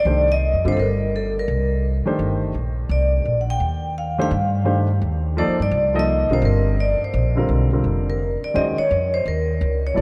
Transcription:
Already playing: vibraphone D5
0.05 upright bass C2, grand piano D#3 A3 D4 G4 C5
0.32 vibraphone D#5
0.53 upright bass F2
0.64 upright bass G2, grand piano D3 G3 C4 F4 G4, vibraphone C5
0.72 vibraphone A4
0.77 upright bass G1, vibraphone A#4
1.16 vibraphone A4
1.39 vibraphone A#4
1.48 upright bass C2
2.05 grand piano D#3 A3 D4 G4 C5, muted upright bass stroke
2.19 upright bass G1
2.54 upright bass A#1
2.89 upright bass C2, vibraphone D5
3.25 upright bass A#1
3.41 vibraphone F#5
3.50 vibraphone G5
3.60 upright bass D#2
3.98 vibraphone F5
4.18 grand piano D#3 A3 D4 G4 C5, vibraphone F5
4.31 upright bass G2
4.64 grand piano D#3 A3 D4 G4 C5
5.02 upright bass D#2
5.37 grand piano F3 A#3 D#4 A4 D5, vibraphone C5
5.48 upright bass F2
5.60 upright bass G2, vibraphone D5
5.71 upright bass C2
5.94 grand piano F3 A#3 D#4 A4 D#5
5.99 vibraphone D#5
6.30 upright bass B1, grand piano D3 G3 C4 F4 A#4, vibraphone C5
6.42 upright bass G1, vibraphone A#4
6.80 vibraphone D5
7.01 vibraphone C5, muted upright bass stroke
7.14 upright bass A#1
7.35 grand piano D3 G3 C4 F4 A#4
7.49 upright bass B1
7.72 grand piano D3 G3 C4 F4 A#4
7.84 upright bass F1
8.10 vibraphone A#4
8.43 vibraphone D5, muted upright bass stroke
8.54 upright bass D#2, grand piano D#3 G#3 C#4 F#4 C5, vibraphone D#5
8.78 vibraphone C#5, muted upright bass stroke
8.91 upright bass F2
9.14 vibraphone C5
9.25 upright bass D#2, vibraphone A#4
9.61 upright bass C#2
9.87 vibraphone C#5
9.94 upright bass A#1, grand piano F#3 B3 E4 A4 D5

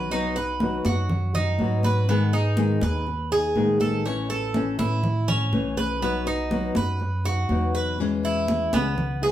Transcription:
Already playing: upright bass B1, nylon-string guitar B2 F#3 B3 D#4 F#4, cuban tres B4
0.11 nylon-string guitar B2 F#3 B3 D#4 F#4, cuban tres D#4, high conga
0.35 nylon-string guitar B3 D#4 F#4, cuban tres B4, high conga
0.60 nylon-string guitar B2 F#3 B3 D#4 F#4, high conga
0.85 upright bass F#2, nylon-string guitar B3 D#4 F#4, cuban tres F#4, high conga
1.09 muted nylon-string guitar stroke, high conga, low conga
1.34 nylon-string guitar B3 D#4 F#4, cuban tres D#4, high conga, low conga
1.59 upright bass G#2, nylon-string guitar B2 F#3 B3 D#4 F#4, high conga
1.83 cuban tres B4, high conga
2.08 nylon-string guitar D#3 G#3 B3 D#4 G#4, cuban tres B3, high conga
2.33 nylon-string guitar B3 D#4 G#4, cuban tres D#4, high conga
2.57 nylon-string guitar D#3 G#3 B3 D#4 G#4, high conga
2.81 upright bass D#2, nylon-string guitar B3 D#4 G#4, cuban tres B4, high conga
3.07 muted nylon-string guitar stroke, high conga
3.31 nylon-string guitar B3 D#4 G#4, cuban tres G#4, high conga
3.55 upright bass A1, nylon-string guitar D#3 G#3 B3 D#4 G#4, high conga
3.80 cuban tres A4, high conga
4.05 nylon-string guitar E3 A3 C#4 E4, cuban tres C#4, high conga
4.30 nylon-string guitar A3 C#4 E4, cuban tres A4, high conga
4.54 nylon-string guitar E3 A3 C#4 E4, high conga
4.78 upright bass A2, nylon-string guitar A3 C#4 E4, cuban tres E4, high conga
5.03 muted nylon-string guitar stroke, high conga, low conga
5.28 nylon-string guitar A3 C#4 E4, cuban tres C#4, high conga, low conga
5.52 upright bass B1, nylon-string guitar E3 A3 C#4 E4, high conga
5.77 cuban tres B4, high conga
6.02 nylon-string guitar B2 F#3 B3 D#4 F#4, cuban tres B3, high conga
6.26 nylon-string guitar B3 D#4 F#4, cuban tres D#4, high conga
6.51 nylon-string guitar B2 F#3 B3 D#4 F#4, high conga
6.75 upright bass F#2, nylon-string guitar B3 D#4 F#4, cuban tres B4, high conga
7.00 muted nylon-string guitar stroke, high conga
7.24 nylon-string guitar B3 D#4 F#4, cuban tres F#4, high conga
7.49 upright bass E2, nylon-string guitar B2 F#3 B3 D#4 F#4, high conga
7.75 cuban tres B4
7.99 nylon-string guitar B2 E3 G#3 C#4 E4, high conga
8.23 cuban tres E4, high conga
8.48 high conga
8.72 upright bass C#2, nylon-string guitar E3 G#3 C#4 E4, cuban tres B3, high conga
8.97 muted nylon-string guitar stroke, high conga, low conga
9.22 nylon-string guitar E3 G#3 B3 E4, cuban tres G#4, high conga

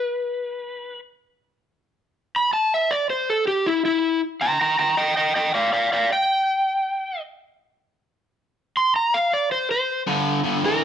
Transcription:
Already playing: electric slide guitar B4
2.36 electric slide guitar B5
2.53 electric slide guitar A5
2.74 electric slide guitar E5
2.91 electric slide guitar D5
3.10 electric slide guitar C5
3.30 electric slide guitar A4
3.48 electric slide guitar G4
3.66 electric slide guitar E4
3.85 electric slide guitar E4
4.41 electric slide guitar G5 A#5
4.61 electric slide guitar G5 A#5
4.79 electric slide guitar G5 A#5
4.97 electric slide guitar D#5 G5
5.17 electric slide guitar D#5 G5
5.36 electric slide guitar D#5 G5
5.54 electric slide guitar D5 F5
5.73 electric slide guitar D5 F5
5.93 electric slide guitar D5 F5
6.12 electric slide guitar G5
8.77 electric slide guitar C6
8.96 electric slide guitar A#5
9.14 electric slide guitar F5
9.33 electric slide guitar D5
9.52 electric slide guitar C5
9.71 electric slide guitar C5
10.07 overdriven electric guitar G2 D3
10.43 overdriven electric guitar G2 D3
10.64 overdriven electric guitar G2 E3, electric slide guitar A#4

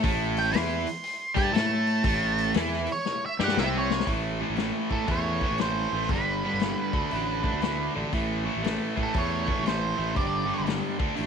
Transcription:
0.04 fingered electric bass A1, overdriven electric guitar A2 A3, kick, open hi-hat
0.37 lead electric guitar G5, open hi-hat
0.53 fingered electric bass E2, overdriven electric guitar E3 E4, lead electric guitar C6, snare, open hi-hat
0.87 open hi-hat
1.04 open hi-hat
1.35 fingered electric bass G2, overdriven electric guitar G3 G4, lead electric guitar A5, kick, open hi-hat
1.53 fingered electric bass A2, overdriven electric guitar A3 A4, lead electric guitar A5, snare, open hi-hat
1.87 open hi-hat
2.04 fingered electric bass A1, overdriven electric guitar A2 A3, kick, open hi-hat
2.38 open hi-hat
2.54 fingered electric bass E2, overdriven electric guitar E3 E4, snare, open hi-hat
2.73 snare
2.87 open hi-hat
2.92 lead electric guitar C#5
3.06 snare
3.26 lead electric guitar E5
3.39 fingered electric bass G2, overdriven electric guitar G3 G4, snare
3.44 lead electric guitar F#5
3.48 snare
3.57 fingered electric bass C2, overdriven electric guitar C3 C4, lead electric guitar E5, snare
3.79 lead electric guitar C#5
3.91 snare
4.00 snare
4.07 fingered electric bass A1, overdriven electric guitar A2 E3 A3, kick, open hi-hat
4.41 overdriven electric guitar A2 E3 A3
4.50 fingered electric bass A1
4.56 overdriven electric guitar A2 E3 A3, snare, open hi-hat
4.90 overdriven electric guitar A2 E3 A3, fingered electric bass A2, lead electric guitar A4, kick
5.08 fingered electric bass E2, overdriven electric guitar A2 E3 A3, lead electric guitar C#5, kick, open hi-hat
5.41 overdriven electric guitar A2 E3 A3, kick
5.51 fingered electric bass A1
5.58 overdriven electric guitar A2 E3 A3, lead electric guitar C5, snare, open hi-hat
5.93 fingered electric bass A1, overdriven electric guitar A2 E3 A3
6.02 snare
6.08 fingered electric bass G1, lead electric guitar B4, kick, open hi-hat
6.12 overdriven electric guitar G2 D3 G3
6.44 overdriven electric guitar G2 D3 G3
6.53 fingered electric bass G1
6.59 overdriven electric guitar G2 D3 G3, snare, open hi-hat
6.93 fingered electric bass D2, overdriven electric guitar D3 A3 D4, kick
7.11 fingered electric bass A1, overdriven electric guitar D3 A3 D4, open hi-hat
7.44 overdriven electric guitar D3 A3 D4, kick
7.54 fingered electric bass D2
7.61 overdriven electric guitar D3 A3 D4, snare, open hi-hat
7.95 fingered electric bass A1, overdriven electric guitar D3 A3 D4
8.13 fingered electric bass A1, overdriven electric guitar A2 E3 A3, kick, open hi-hat
8.46 overdriven electric guitar A2 E3 A3
8.57 fingered electric bass A1
8.63 overdriven electric guitar A2 E3 A3, snare, open hi-hat
8.96 overdriven electric guitar A2 E3 A3, fingered electric bass A2, kick
9.03 lead electric guitar A4
9.14 fingered electric bass E2, overdriven electric guitar A2 E3 A3, kick, open hi-hat
9.18 lead electric guitar C#5
9.46 overdriven electric guitar A2 E3 A3, kick
9.58 fingered electric bass A1
9.64 overdriven electric guitar A2 E3 A3, lead electric guitar C5, snare, open hi-hat
9.97 fingered electric bass A1, overdriven electric guitar A2 E3 A3
10.14 fingered electric bass G1, overdriven electric guitar G2 D3 G3, lead electric guitar D5, kick, open hi-hat
10.46 overdriven electric guitar G2 D3 G3
10.60 fingered electric bass G1
10.64 overdriven electric guitar G2 D3 G3, open hi-hat
10.68 snare
10.99 fingered electric bass D2, overdriven electric guitar D3 A3 D4, kick
11.16 fingered electric bass A1, overdriven electric guitar D3 A3 D4, open hi-hat

